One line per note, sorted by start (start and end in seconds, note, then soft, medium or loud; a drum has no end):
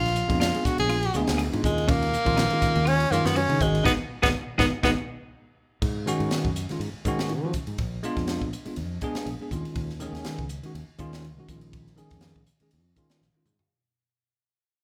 0.00 0.22 A#1 medium
0.00 0.38 F4 medium
0.05 snare soft
0.05 ride medium
0.16 hi-hat pedal medium
0.28 0.50 F2 medium
0.28 0.45 G#3 medium
0.28 0.45 B3 medium
0.28 0.46 D4 medium
0.28 0.46 F4 medium
0.28 kick medium
0.28 ride medium
0.40 0.58 D4 medium
0.40 0.68 F4 medium
0.40 snare loud
0.40 ride medium
0.53 0.95 G#3 medium
0.53 0.96 B3 medium
0.53 0.96 D4 medium
0.53 0.97 G#4 medium
0.53 ride medium
0.65 0.79 F#4 medium
0.65 kick medium
0.65 snare soft
0.65 hi-hat pedal medium
0.78 1.08 A#1 medium
0.78 1.25 G#4 medium
0.78 ride medium
0.89 1.08 F4 medium
0.89 ride medium
1.03 ride medium
1.13 1.26 D2 medium
1.13 1.40 G#3 medium
1.13 1.40 B3 medium
1.13 1.41 D4 medium
1.13 1.41 G#4 loud
1.13 hi-hat pedal medium
1.27 1.48 D2 medium
1.27 snare loud
1.27 ride medium
1.38 1.57 G#4 medium
1.38 ride medium
1.51 1.62 G#2 medium
1.51 1.60 G#3 medium
1.51 1.60 B3 medium
1.51 1.60 D4 medium
1.51 1.61 F4 medium
1.51 ride medium
1.62 2.15 D#2 medium
1.62 2.12 D#3 medium
1.62 2.12 G#3 medium
1.62 1.91 G#3 medium
1.62 2.13 C#4 medium
1.62 2.13 F4 medium
1.62 kick medium
1.62 hi-hat pedal medium
1.78 ride medium
1.88 2.89 A#3 loud
1.88 2.06 C#4 medium
1.88 kick loud
1.88 ride medium
2.02 ride medium
2.14 hi-hat pedal medium
2.24 2.46 A#1 medium
2.24 2.42 D#3 medium
2.24 2.42 G#3 medium
2.24 2.42 C#4 medium
2.24 2.43 F4 loud
2.24 kick medium
2.24 ride medium
2.37 2.55 D#4 medium
2.37 snare loud
2.37 ride medium
2.50 2.93 D#3 medium
2.50 2.93 G#3 medium
2.50 2.93 C#4 medium
2.50 2.94 F4 medium
2.50 ride medium
2.61 kick medium
2.61 snare soft
2.61 hi-hat pedal medium
2.75 3.05 D#2 medium
2.75 ride medium
2.85 3.13 C#4 loud
2.85 3.04 F4 medium
2.85 ride medium
3.00 ride medium
3.11 3.22 F#2 medium
3.11 3.37 D#3 medium
3.11 3.37 G#3 medium
3.11 3.27 A#3 medium
3.11 3.38 C#4 medium
3.11 3.38 F4 loud
3.11 snare soft
3.11 hi-hat pedal medium
3.25 3.45 F#2 medium
3.25 3.39 B3 medium
3.25 snare medium
3.25 ride medium
3.35 3.64 C#4 loud
3.35 3.54 F#4 medium
3.35 ride medium
3.49 3.58 C#3 medium
3.49 3.58 D#3 medium
3.49 3.58 G#3 medium
3.49 3.58 C#4 medium
3.49 3.58 D#4 medium
3.49 ride medium
3.61 3.81 G#1 medium
3.61 3.86 D#3 medium
3.61 3.85 G#3 medium
3.61 3.87 C#4 medium
3.61 3.87 F#4 medium
3.61 kick medium
3.61 hi-hat pedal medium
3.75 ride medium
3.85 3.95 G#1 medium
3.85 3.94 G#3 medium
3.85 3.92 B3 medium
3.85 3.94 B3 medium
3.85 3.94 D#4 medium
3.85 3.94 F#4 medium
3.85 3.94 G#4 medium
3.85 kick medium
3.85 snare medium
4.22 4.32 G#1 medium
4.22 4.31 G#3 medium
4.22 4.29 B3 medium
4.22 4.31 B3 medium
4.22 4.30 D#4 medium
4.22 4.30 F#4 medium
4.22 4.30 G#4 medium
4.22 kick medium
4.22 snare medium
4.58 4.69 G#1 medium
4.58 4.68 G#3 medium
4.58 4.68 B3 loud
4.58 4.66 B3 medium
4.58 4.67 D#4 medium
4.58 4.68 D#4 loud
4.58 4.67 F#4 medium
4.58 4.67 G#4 medium
4.58 kick medium
4.58 snare medium
4.83 4.94 G#1 medium
4.83 4.93 G#3 medium
4.83 4.90 B3 medium
4.83 4.93 B3 medium
4.83 4.92 D#4 medium
4.83 4.93 D#4 medium
4.83 4.92 F#4 medium
4.83 4.92 G#4 medium
4.83 kick medium
4.83 snare medium
5.82 6.13 G#2 medium
5.82 kick medium
5.82 crash medium
6.06 6.49 D#3 medium
6.06 6.50 G#3 medium
6.06 6.50 C#4 loud
6.06 6.50 F#4 loud
6.06 hi-hat pedal medium
6.06 ride soft
6.20 6.29 G#2 medium
6.20 ride soft
6.31 snare loud
6.31 ride medium
6.45 6.65 F#2 medium
6.45 kick medium
6.56 hi-hat pedal medium
6.56 ride medium
6.69 6.77 D#3 medium
6.69 6.78 G#3 medium
6.69 6.78 C#4 medium
6.69 6.78 F4 medium
6.69 muted fretless electric bass stroke soft
6.69 snare soft
6.69 ride soft
6.80 6.91 G#2 medium
6.80 6.87 C#4 soft
6.80 ride medium
6.84 6.89 F4 soft
6.94 muted fretless electric bass stroke soft
7.05 7.43 G#2 medium
7.05 7.31 D#3 loud
7.05 7.31 G#3 medium
7.05 7.32 C#4 loud
7.05 7.32 F#4 loud
7.05 kick medium
7.05 hi-hat pedal medium
7.05 ride soft
7.19 snare medium
7.19 ride medium
7.29 ride medium
7.43 7.51 D#3 medium
7.43 7.52 F3 medium
7.43 7.51 G#3 medium
7.43 7.52 C#4 medium
7.43 7.52 F#4 medium
7.53 7.60 C#4 soft
7.53 7.62 D#4 soft
7.53 kick medium
7.53 hi-hat pedal medium
7.53 ride medium
7.67 7.77 G#2 medium
7.67 ride medium
7.78 7.99 A#1 medium
7.78 kick medium
7.78 ride medium
8.03 8.46 G#3 loud
8.03 8.47 B3 medium
8.03 8.47 D4 medium
8.03 8.47 F4 loud
8.03 hi-hat pedal medium
8.03 ride medium
8.17 8.37 F2 medium
8.17 kick medium
8.17 snare soft
8.17 ride medium
8.27 snare loud
8.27 ride medium
8.41 8.51 A#1 medium
8.41 kick medium
8.53 hi-hat pedal medium
8.53 ride medium
8.65 8.74 G#3 medium
8.65 8.74 B3 medium
8.65 8.74 D4 medium
8.65 8.75 F4 medium
8.65 muted fretless electric bass stroke soft
8.65 ride medium
8.76 8.97 F2 medium
8.76 8.84 D4 soft
8.76 8.85 F4 soft
8.76 ride medium
9.01 9.28 G#3 loud
9.01 9.28 B3 medium
9.01 9.28 D4 loud
9.01 9.29 G#4 loud
9.01 kick medium
9.01 hi-hat pedal medium
9.01 ride medium
9.15 snare loud
9.15 ride medium
9.26 9.37 A#1 medium
9.26 ride medium
9.41 9.48 G#3 medium
9.41 9.48 B3 medium
9.41 9.49 D4 medium
9.41 9.49 G#4 medium
9.51 9.62 D#2 medium
9.51 9.92 D#3 medium
9.51 9.92 G#3 medium
9.51 9.93 C#4 medium
9.51 9.93 F4 medium
9.51 kick medium
9.51 hi-hat pedal medium
9.51 ride soft
9.65 ride medium
9.75 10.07 D#2 medium
9.75 kick loud
9.75 ride medium
9.90 snare soft
10.00 10.43 D#3 medium
10.00 10.44 G#3 medium
10.00 10.44 C#4 medium
10.00 10.45 G#4 loud
10.00 hi-hat pedal medium
10.00 ride medium
10.13 10.22 D#2 medium
10.13 snare soft
10.13 ride soft
10.24 snare loud
10.24 ride medium
10.39 10.59 C#2 medium
10.39 kick medium
10.49 hi-hat pedal medium
10.49 ride soft
10.63 10.71 D#3 medium
10.63 10.72 G#3 medium
10.63 10.72 C#4 medium
10.63 10.72 F#4 medium
10.63 muted fretless electric bass stroke soft
10.63 ride medium
10.75 10.86 D#2 medium
10.75 10.81 C#4 soft
10.75 ride medium
10.98 11.38 D#2 medium
10.98 11.24 D#3 medium
10.98 11.25 G#3 medium
10.98 11.25 C#4 medium
10.98 11.25 F4 loud
10.98 kick medium
10.98 hi-hat pedal medium
10.98 ride soft
11.13 snare medium
11.13 ride soft
11.24 ride medium
11.37 11.47 B1 medium
11.37 11.45 D#3 medium
11.37 11.45 G#3 medium
11.37 11.46 C#4 medium
11.37 11.46 F#4 medium
11.48 12.00 A#1 medium
11.48 11.89 D#3 medium
11.48 11.89 G#3 medium
11.48 11.90 C#4 medium
11.48 11.90 F4 medium
11.48 kick medium
11.48 hi-hat pedal medium
11.48 ride soft
11.61 ride medium
11.73 kick medium
11.73 ride medium
11.87 snare soft
11.96 12.40 D#3 medium
11.96 12.41 G#3 medium
11.96 12.41 C#4 medium
11.96 12.41 G#4 loud
11.96 hi-hat pedal medium
11.96 ride soft
12.10 12.31 F2 medium
12.10 kick medium
12.10 snare soft
12.10 ride soft
12.21 snare loud
12.21 ride medium
12.36 12.45 A#1 medium
12.36 kick medium
12.46 hi-hat pedal medium
12.46 ride soft
12.60 12.68 D#3 medium
12.60 12.69 G#3 medium
12.60 12.69 C#4 medium
12.60 12.69 G#4 medium
12.60 muted fretless electric bass stroke soft
12.60 ride medium
12.71 12.93 F2 medium
12.71 12.79 C#4 soft
12.71 12.80 G#4 soft
12.71 ride medium
12.96 13.22 D#3 medium
12.96 13.23 G#3 medium
12.96 13.23 C#4 medium
12.96 13.23 F4 medium
12.96 kick medium
12.96 hi-hat pedal medium
12.96 ride medium
13.09 snare medium
13.09 ride soft
13.21 13.32 A#1 medium
13.21 snare soft
13.34 13.43 D#3 medium
13.34 13.43 G#3 medium
13.34 13.43 C#4 medium
13.34 13.43 F4 medium
13.34 muted fretless electric bass stroke soft
13.34 high tom medium
13.45 13.57 G#2 medium
13.45 13.53 C#4 soft
13.45 13.54 F4 soft
13.45 hi-hat pedal medium
13.45 mid tom medium
13.59 floor tom medium